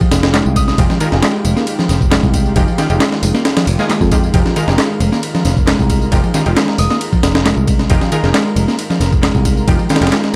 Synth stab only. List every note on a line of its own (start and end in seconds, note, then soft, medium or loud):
0.78 0.98 G#3 medium
0.78 0.98 D#4 medium
0.78 0.98 F4 medium
0.78 0.98 G4 loud
1.00 1.11 G#3 loud
1.00 1.11 D#4 medium
1.00 1.11 F4 medium
1.00 1.11 A#4 loud
1.12 1.18 G#3 medium
1.12 1.18 D#4 medium
1.12 1.18 F4 medium
1.12 1.18 G4 medium
2.56 2.67 G#3 medium
2.56 2.67 D#4 medium
2.56 2.67 F4 medium
2.56 2.67 G4 loud
2.78 2.87 G#3 medium
2.78 2.87 D#4 medium
2.78 2.87 F4 medium
2.78 2.87 G4 medium
2.90 2.96 G#3 medium
2.90 2.96 D#4 medium
2.90 2.96 F4 medium
2.90 2.96 G4 loud
3.79 3.85 G#3 loud
3.79 3.85 D#4 medium
3.79 3.85 F4 loud
3.79 3.85 G#4 loud
4.12 4.22 G#3 medium
4.12 4.22 D#4 medium
4.12 4.22 F4 medium
4.12 4.22 G4 medium
4.34 4.54 G#3 medium
4.34 4.54 D#4 medium
4.34 4.54 F4 medium
4.34 4.54 G4 loud
4.56 4.66 G#3 loud
4.56 4.66 D#4 medium
4.56 4.66 F4 loud
4.56 4.66 A#4 loud
4.68 4.74 G#3 medium
4.68 4.74 D#4 medium
4.68 4.74 F4 medium
4.68 4.74 G4 medium
6.12 6.22 G#3 medium
6.12 6.22 D#4 medium
6.12 6.22 F4 medium
6.12 6.22 G4 loud
6.34 6.43 G#3 medium
6.34 6.43 D#4 medium
6.34 6.43 F4 medium
6.34 6.43 G4 medium
6.46 6.52 G#3 medium
6.46 6.52 D#4 medium
6.46 6.52 F4 medium
6.46 6.52 G4 medium
7.90 8.10 G#3 medium
7.90 8.10 D#4 medium
7.90 8.10 F4 medium
7.90 8.10 G4 loud
8.12 8.22 G#3 loud
8.12 8.22 D#4 medium
8.12 8.22 F4 medium
8.12 8.22 A#4 loud
8.24 8.29 G#3 medium
8.24 8.29 D#4 medium
8.24 8.29 F4 medium
8.24 8.29 G4 medium
9.68 9.78 G#3 medium
9.68 9.78 D#4 medium
9.68 9.78 F4 medium
9.68 9.78 G4 loud
9.90 9.99 G#3 medium
9.90 9.99 D#4 medium
9.90 9.99 F4 medium
9.90 9.99 G4 medium
10.01 10.07 G#3 medium
10.01 10.07 D#4 medium
10.01 10.07 F4 medium
10.01 10.07 G4 loud